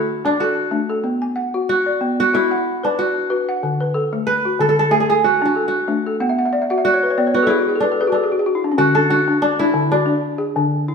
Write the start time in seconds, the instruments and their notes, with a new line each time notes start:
Already playing: kora E4 F#4, balafon A4
0.25 balafon D4, kora D4
0.40 kora F#4, balafon A4
0.71 balafon A3 D4
0.89 balafon A4
1.04 balafon B3
1.22 balafon G#5
1.36 balafon F#5
1.54 balafon F#4
1.69 kora F#4
1.86 balafon D5
2.01 balafon B3
2.20 kora F#4
2.34 kora E4, balafon F#4
2.51 balafon F#5
2.83 kora D4, balafon B4
2.99 kora F#4
3.30 balafon F#4 B4
3.49 balafon F#5
3.63 balafon D3
3.81 balafon B4
3.94 balafon A4
4.13 balafon A3
4.27 kora B4
4.45 balafon F#4
4.59 balafon D3, kora A4
4.69 kora A4
4.79 kora A4
4.91 balafon A3, kora G#4
5.00 kora G#4
5.09 kora G#4, balafon A4
5.24 kora F#4
5.42 balafon D4, kora F#4
5.56 balafon A4
5.68 kora F#4
5.88 balafon A3 D4
6.06 balafon A4
6.20 balafon B3 F#5
6.29 balafon E5
6.38 balafon F#5
6.45 balafon E5
6.53 balafon D5
6.62 balafon E5
6.70 balafon F#4 F#5
6.78 balafon E5
6.85 kora F#4, balafon D5
6.94 balafon C#5
7.03 balafon B4
7.10 balafon C#5
7.18 balafon B3 D5
7.27 balafon C#5
7.34 kora F#4, balafon B4
7.43 kora E4, balafon A4
7.50 balafon F#4 G#4
7.59 balafon F#4
7.69 balafon G#4
7.76 balafon A4
7.80 kora D4, balafon B4
7.92 balafon A4
8.01 balafon G#4 B4
8.07 balafon F#4
8.12 kora D4, balafon A4
8.24 balafon G#4
8.32 balafon F#4
8.39 balafon G#4
8.46 balafon F#4
8.55 balafon E4
8.64 balafon D4
8.72 balafon C#4
8.78 balafon D3 F#4, kora F#4
8.95 balafon D4, kora A4
9.10 balafon D4, kora F#4
9.28 balafon D4
9.42 kora D4, balafon D4
9.59 balafon D4, kora E4
9.74 balafon D3
9.92 kora D4, balafon F#4
10.06 balafon D4
10.38 balafon G#4
10.56 balafon D3 D4
10.88 balafon E4